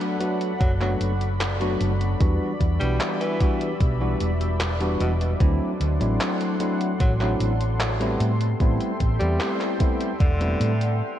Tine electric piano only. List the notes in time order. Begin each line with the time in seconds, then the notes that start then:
Already playing: F#3 A3 B3 D4 F#4
0.19 F#3 A3 B3 D4 F#4
0.80 F#3 A3 B3 D4 F#4
1.60 F#3 A3 B3 D4 F#4
2.20 E3 G3 B3 D4 F#4
2.80 E3 G3 B3 D4 F#4
3.40 E3 G3 B3 D4 F#4
4.00 E3 G3 B3 D4 F#4
4.80 E3 G3 B3 D4 F#4
5.40 F#3 A3 C4 D4 E4
6.00 F#3 A3 C4 D4 E4
6.60 F#3 A3 C4 D4 E4
7.20 F#3 A3 C4 D4 E4
8.00 G3 A3 B3 C4 E4
8.60 G3 A3 B3 C4 E4
9.20 G3 A3 B3 C4 E4
9.80 G3 A3 B3 C4 E4
10.40 G3 A3 B3 C4 E4